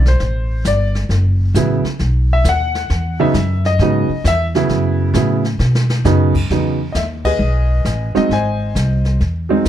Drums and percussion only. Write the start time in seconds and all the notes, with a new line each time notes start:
0.05 snare
0.20 brush sweep, snare
0.65 snare, hi-hat pedal
0.95 snare
1.10 brush sweep, snare
1.55 snare, hi-hat pedal
1.85 snare
1.99 brush sweep, snare
2.45 snare, hi-hat pedal
2.75 snare
2.90 brush sweep, snare
3.34 snare, hi-hat pedal
3.65 snare
3.79 brush sweep, snare
4.25 snare, hi-hat pedal
4.55 snare
4.69 brush sweep, snare
5.14 snare, hi-hat pedal
5.44 snare
5.60 snare
5.75 snare
5.90 snare
6.05 snare, hi-hat pedal
6.35 kick, crash
6.50 brush sweep, snare
6.95 snare, hi-hat pedal
7.25 kick, ride
7.40 brush sweep
7.85 snare, hi-hat pedal
8.15 snare
8.31 brush sweep, snare
8.76 snare, hi-hat pedal
9.05 snare
9.20 brush sweep, snare
9.65 snare, hi-hat pedal